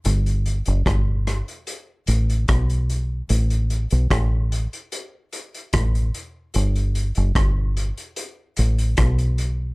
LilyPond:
<<
  \new Staff \with { instrumentName = "Fingered electric bass" } { \clef bass \time 4/4 \key g \lydian \tempo 4 = 74 g,,8. fis,,16 g,,8. r8. a,,8 b,,4 | a,,8. b,,16 a,,8. r4 r16 a,,8 r8 | g,,8. fis,,16 g,,8. r8. a,,8 b,,4 | }
  \new DrumStaff \with { instrumentName = "Drums" } \drummode { \time 4/4 hh16 hh16 hh16 hh16 <hh bd ss>8 <hh ss>16 hh16 hh8 hh16 hh16 <hh bd ss>16 hh16 hh8 | hh16 hh16 hh16 hh16 <hh bd ss>8 hh16 hh16 hh8 hh16 hh16 <hh bd ss>16 hh16 hh8 | hh16 hh16 hh16 hh16 <hh bd ss>8 hh16 hh16 hh8 hh16 hh16 <hh bd ss>16 hh16 hh8 | }
>>